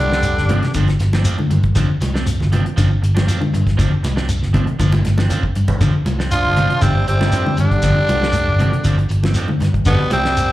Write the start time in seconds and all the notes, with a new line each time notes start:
Already playing: D3 G3 D4
0.00 C2, muted clean electric guitar stroke
0.12 C4 D4, snare
0.23 muted clean electric guitar stroke, closed hi-hat, shekere
0.37 G1, snare
0.49 C3 F3 C4 D4, closed hi-hat, high conga, low conga, shekere
0.63 C3, muted clean electric guitar stroke, snare, closed hi-hat
0.74 G1 D3 F3 C4 D4, kick, closed hi-hat, shekere
0.88 muted clean electric guitar stroke, snare, closed hi-hat
0.99 G1, muted clean electric guitar stroke, snare, closed hi-hat, shekere
1.13 F3 C4 D4, snare, high conga
1.25 F3 C4 D4, closed hi-hat, shekere
1.38 D3, muted clean electric guitar stroke, high conga
1.50 G2, muted clean electric guitar stroke, closed hi-hat, low conga, shekere
1.63 kick, closed hi-hat
1.75 G1 D3 F3 C4 D4, kick, snare, closed hi-hat, shekere
1.89 muted clean electric guitar stroke
2.01 C2, muted clean electric guitar stroke, snare, closed hi-hat, high conga, shekere
2.14 C4 D4, snare, high conga
2.26 muted clean electric guitar stroke, closed hi-hat, shekere
2.40 G1, snare, low conga
2.52 C3 F3 C4 D4, closed hi-hat, high conga, low conga, shekere
2.65 muted clean electric guitar stroke, closed hi-hat
2.76 G1 D3 F3 C4 D4, kick, closed hi-hat, shekere
2.89 muted clean electric guitar stroke
3.02 G1, muted clean electric guitar stroke, closed hi-hat, shekere
3.15 F3 C4 D4, snare, high conga
3.26 F3 C4 D4, closed hi-hat, shekere
3.40 D3, muted clean electric guitar stroke, high conga
3.54 G2, muted clean electric guitar stroke, closed hi-hat, low conga, shekere
3.67 kick, snare, closed hi-hat
3.77 G1 D3 F3 C4 D4, kick, closed hi-hat, shekere
3.92 muted clean electric guitar stroke
4.03 C2, muted clean electric guitar stroke, snare, closed hi-hat, high conga, shekere
4.16 C4 D4, snare
4.29 muted clean electric guitar stroke, closed hi-hat, shekere
4.42 G1, snare
4.53 C3 F3 C4 D4, kick, closed hi-hat, high conga, low conga, shekere
4.66 C3, muted clean electric guitar stroke, closed hi-hat
4.79 G1 D3 F3 D4, muted clean electric guitar stroke, kick, closed hi-hat, high conga, shekere
4.92 muted clean electric guitar stroke, closed hi-hat, high conga
5.05 G1, muted clean electric guitar stroke, snare, closed hi-hat, high conga, shekere
5.17 F3 C4 D4, snare, high conga
5.30 F3 C4 D4, closed hi-hat, low conga, shekere
5.43 muted clean electric guitar stroke, kick
5.55 G2, muted clean electric guitar stroke, closed hi-hat, shekere
5.68 kick, closed hi-hat, low conga
5.81 G1 D3 F3 C4 D4, kick, closed hi-hat, shekere
5.94 muted clean electric guitar stroke
6.05 C2, muted clean electric guitar stroke, closed hi-hat, high conga, shekere
6.19 C4 D4, snare
6.31 F3 D4 F4, muted clean electric guitar stroke, closed hi-hat, shekere
6.45 G1
6.56 C3 F3 C4 D4, closed hi-hat, high conga, low conga, shekere
6.70 C3, muted clean electric guitar stroke, closed hi-hat
6.81 G1 C3 D3 F3 G3 C4 D4, kick, closed hi-hat, shekere
6.95 muted clean electric guitar stroke
7.07 G1 C3 G3 C4, muted clean electric guitar stroke, closed hi-hat, shekere
7.20 F3 C4 D4, snare, high conga
7.32 F3 C4 D4, closed hi-hat, shekere
7.45 D3, muted clean electric guitar stroke, high conga
7.57 G2 D3 G3 D4, muted clean electric guitar stroke, closed hi-hat, low conga, shekere
7.71 kick, closed hi-hat
7.82 G1 D3 F3 C4 D4, kick, closed hi-hat, shekere
7.97 muted clean electric guitar stroke
8.08 C2, muted clean electric guitar stroke, closed hi-hat, high conga, shekere
8.22 C4 D4, snare, high conga
8.32 muted clean electric guitar stroke, closed hi-hat, shekere
8.48 G1
8.59 C3 F3 C4 D4, closed hi-hat, high conga, low conga, shekere
8.72 C3, muted clean electric guitar stroke, closed hi-hat
8.84 G1 D3 F3 C4 D4, kick, closed hi-hat, shekere
8.98 muted clean electric guitar stroke, closed hi-hat
9.09 G1, muted clean electric guitar stroke, closed hi-hat, shekere
9.23 F3 C4, snare, high conga
9.34 F3 C4 D4, closed hi-hat, shekere
9.48 D3, muted clean electric guitar stroke, high conga
9.60 G2, muted clean electric guitar stroke, snare, closed hi-hat, low conga, shekere
9.74 kick, closed hi-hat
9.85 G1 B2 D3 F3 G3 B3 C4 D4, kick, closed hi-hat, shekere
10.01 muted clean electric guitar stroke
10.10 C2 C3 G3 C4, muted clean electric guitar stroke, closed hi-hat, high conga, shekere
10.25 C4 D4, snare
10.37 muted clean electric guitar stroke, closed hi-hat, shekere